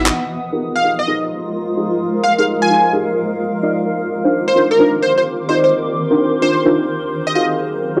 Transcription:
Already playing: fm bass G#1, ambient pad E3 B3 B4 D#5 F#5 D#6, synth stab D#4 E4 F#4 B4
0.06 clap, closed hi-hat, cabasa
0.14 ambient pad F3 G#3 F4 A#4 C5 D#5 A#5
0.53 synth stab D#4 F4 G4 G#4 A#4
0.57 ambient pad G#3 A#4
0.76 digital synth lead F5, ambient pad F5
0.84 synth stab D#4 F4 G4 G#4 A#4
0.99 digital synth lead D#5
1.07 synth stab D#4 F4 G4 G#4 A#4
1.77 synth stab D#4 F4 G4 G#4 D#5
2.00 ambient pad F6
2.24 digital synth lead F5
2.38 synth stab D#4 F4 G4 G#4 A#4, digital synth lead F5
2.62 digital synth lead G#5
2.70 synth stab D#4 F4 G4 G#4 A#4
2.93 synth stab D#4 F4 G4 G#4 A#4
3.63 synth stab D#4 F4 A#4 D5 D#5
3.86 ambient pad D#3 C4 G4 A#4 D6
4.24 synth stab D4 D#4 F4 A#4 C5
4.34 ambient pad D6
4.48 digital synth lead C5
4.56 synth stab D4 D#4 F4 A#4 C5
4.71 digital synth lead A#4, ambient pad C6
4.79 synth stab D4 D#4 F4 A#4 C5
5.02 digital synth lead C5
5.18 digital synth lead C5, ambient pad C5
5.49 synth stab D#4 F4 A#4 D5 D#5, digital synth lead C5
5.64 digital synth lead C5
6.10 synth stab D4 D#4 F4 A#4 C5
6.42 synth stab D4 D#4 F4 A#4 C5, digital synth lead C5
6.65 synth stab D4 D#4 F4 A#4 C5
7.27 digital synth lead D#5
7.35 ambient pad D#3 F#3 C#4 G#4, synth stab D#4 F4 F#4 G#4 F5, digital synth lead D#5
7.51 ambient pad F#3
7.97 synth stab D#4 F4 F#4 G#4 C#5

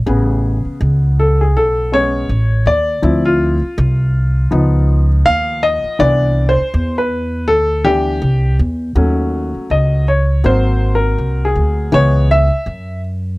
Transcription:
0.06 upright bass A1, grand piano C#3 B3 G#4
0.65 muted upright bass stroke
0.81 upright bass C#2
1.20 grand piano A4
1.41 grand piano G#4
1.55 upright bass B1, grand piano A4
1.92 grand piano G#3 B3 C#4 C#5
2.29 upright bass A1
2.66 upright bass D#2, grand piano D5
3.02 upright bass D2, grand piano F3 C4 E4
3.25 grand piano F4
3.62 muted upright bass stroke
3.78 upright bass C2
4.51 upright bass C#2, grand piano F3 B3 D#4
5.26 upright bass D#2, grand piano F5
5.63 grand piano D#5
5.84 muted upright bass stroke
5.99 upright bass C2, grand piano E3 B3 D4 D5
6.49 grand piano C5
6.58 muted upright bass stroke
6.74 upright bass E2
6.98 grand piano B4
7.48 upright bass D2, grand piano A4
7.84 grand piano E3 B3 D4 G4
8.22 upright bass C2
8.59 upright bass E2
8.95 upright bass D#2, grand piano F#3 A3 C#4
9.55 muted upright bass stroke
9.70 upright bass C#2, grand piano D#5
10.08 grand piano C#5
10.44 upright bass G#1, grand piano F#3 A#3 C4 C5
10.95 grand piano A#4
11.18 upright bass C2
11.45 grand piano G#4
11.55 upright bass D2
11.92 upright bass C#2, grand piano E3 G#3 B3 C#5
12.31 grand piano E5
12.50 muted upright bass stroke
12.66 upright bass F#2

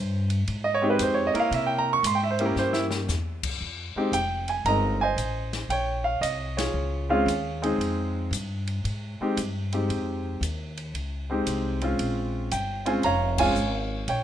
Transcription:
Already playing: upright bass G2, grand piano C5
0.30 ride
0.48 upright bass G#2, ride
0.64 grand piano D#5
0.74 grand piano C#5
0.82 grand piano G#3 C4 D#4 G4
0.90 grand piano B4
0.99 upright bass F2, grand piano C5, hi-hat pedal, ride
1.14 grand piano C#5
1.27 grand piano D#5
1.34 grand piano A#3 E4 A#4 C#5, muted upright bass stroke, ride
1.40 grand piano F5
1.51 upright bass C3, grand piano E5, ride
1.66 grand piano G5
1.78 grand piano A#5
1.93 grand piano C#6
2.03 upright bass G#2, grand piano C6, hi-hat pedal, ride
2.15 grand piano G5
2.23 grand piano E5
2.31 grand piano C5
2.39 grand piano A#3 C#4 E4 G4, ride
2.45 grand piano A#4
2.56 upright bass G2, grand piano C5, snare
2.73 grand piano E4, snare
2.91 snare
3.08 upright bass E2, snare, hi-hat pedal
3.43 kick, crash
3.60 upright bass F2
3.95 grand piano G#3 C4 D#4 G4, muted upright bass stroke
4.12 upright bass F1, grand piano G5, hi-hat pedal, ride
4.48 grand piano G#5, ride
4.65 upright bass G1, grand piano G#3 C4 D#4 A#4 A#5, ride
4.69 grand piano D#5
5.01 grand piano C5 D#5 G#5
5.16 upright bass A1, hi-hat pedal, ride
5.53 snare, ride
5.69 upright bass A#1, grand piano C#5 G5, ride
6.04 grand piano F5
6.21 upright bass C2, grand piano D#5, hi-hat pedal, ride
6.57 grand piano F4 G#4 C#5, snare, ride
6.74 upright bass C#2
7.09 grand piano G#3 C4 C#4 F4 G#4 C#5 F5
7.26 upright bass D#2, hi-hat pedal, ride
7.62 grand piano G#3 C4 D#4 G#4, ride
7.78 upright bass F2, ride
8.31 upright bass G2, hi-hat pedal, ride
8.67 ride
8.84 upright bass G#2, ride
9.20 grand piano G#3 C4 D#4 G4, muted upright bass stroke
9.37 upright bass G2, hi-hat pedal, ride
9.73 grand piano G#3 C4 D#4 G4, ride
9.89 upright bass F2, ride
10.41 upright bass D#2, hi-hat pedal, ride
10.77 ride
10.94 upright bass C#2, ride
11.30 grand piano G#3 C4 D#4 G4
11.47 upright bass C2, hi-hat pedal, ride
11.82 grand piano G#3 C4 C#4 F4, ride
11.99 upright bass A#1, ride
12.51 upright bass G1, grand piano G5, hi-hat pedal, ride
12.85 grand piano G#3 C4 C#4 F4 G#5, ride
13.03 upright bass F1, grand piano C#5 F5 A#5, ride
13.38 grand piano G#3 C4 C#4 F4 C#5 F5 G#5, kick, crash
13.55 upright bass G#1, hi-hat pedal
14.08 upright bass A#1, grand piano C#5 G5, ride

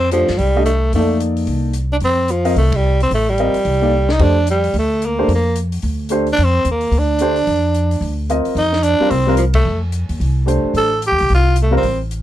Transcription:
Already playing: upright bass F2, tenor saxophone C4
0.11 tenor saxophone F3, grand piano A3 D4 G4 C5, closed hi-hat
0.28 upright bass F#2, snare
0.38 upright bass C2, tenor saxophone G3, open hi-hat
0.55 grand piano A3 D4 G4 D#5
0.65 tenor saxophone A3, closed hi-hat
0.93 upright bass F2, tenor saxophone A3, grand piano A#3 D#4 A4 D5, open hi-hat
1.20 closed hi-hat
1.37 open hi-hat
1.47 upright bass C2, open hi-hat
1.73 closed hi-hat
1.92 tenor saxophone D4
2.00 upright bass F2, open hi-hat
2.05 tenor saxophone C4
2.28 tenor saxophone F3, closed hi-hat
2.44 grand piano C4 F4 A#4 D#5, open hi-hat
2.56 upright bass C2, tenor saxophone A3, open hi-hat
2.72 tenor saxophone G3, kick, ride
3.01 tenor saxophone C4, open hi-hat
3.11 upright bass A1, tenor saxophone A3, open hi-hat
3.30 tenor saxophone G3
3.38 grand piano C4 F4 A#4 D#5, closed hi-hat
3.54 muted upright bass stroke, open hi-hat
3.65 upright bass C2, open hi-hat
3.81 grand piano A#3 D#4 A4 D5
4.09 tenor saxophone D#4, snare
4.19 upright bass F2, grand piano A3 D4 G4 C5, kick, ride
4.23 tenor saxophone D4
4.47 tenor saxophone G3, closed hi-hat
4.64 open hi-hat
4.74 upright bass D2, open hi-hat
4.78 tenor saxophone A3
5.02 closed hi-hat
5.06 tenor saxophone A#3
5.18 grand piano A3 D4 G4 C5
5.28 upright bass F2, open hi-hat
5.35 tenor saxophone A#3
5.56 closed hi-hat
5.72 open hi-hat
5.82 upright bass D2, open hi-hat
6.09 grand piano A3 D4 G4 C5, closed hi-hat
6.27 open hi-hat
6.33 tenor saxophone D4
6.37 upright bass F2, open hi-hat
6.44 tenor saxophone C4
6.65 upright bass D#2, closed hi-hat
6.71 tenor saxophone A#3
6.81 open hi-hat
6.91 upright bass D2, open hi-hat
6.98 tenor saxophone D4
7.19 grand piano A3 D4 G4 C5, closed hi-hat
7.36 open hi-hat
7.47 upright bass F2, open hi-hat
7.75 closed hi-hat
7.91 open hi-hat
8.01 upright bass D2, open hi-hat
8.29 grand piano C4 F4 A#4 D#5, closed hi-hat
8.45 muted upright bass stroke, open hi-hat
8.55 upright bass F2, tenor saxophone D#4, open hi-hat
8.73 snare
8.83 tenor saxophone D4, closed hi-hat
9.00 grand piano G3 C4 F4 A#4, muted upright bass stroke
9.10 upright bass C2, tenor saxophone C4, open hi-hat
9.27 grand piano G3 C4 F4 A#4
9.37 tenor saxophone F3, closed hi-hat
9.54 tenor saxophone A3, kick, ride
9.65 upright bass F2
9.92 closed hi-hat
10.09 upright bass D#2, open hi-hat
10.20 upright bass C2, open hi-hat
10.46 grand piano A3 D4 G4 C5, closed hi-hat
10.64 muted upright bass stroke
10.74 upright bass A1, tenor saxophone A4, open hi-hat
11.02 closed hi-hat
11.07 tenor saxophone G4
11.12 upright bass D#2
11.18 upright bass C2, open hi-hat
11.29 upright bass C2, open hi-hat
11.34 tenor saxophone F4
11.56 closed hi-hat
11.62 tenor saxophone A3
11.71 grand piano G3 C4 F4 A#4
11.77 tenor saxophone C4
11.83 upright bass A1, open hi-hat
12.11 closed hi-hat

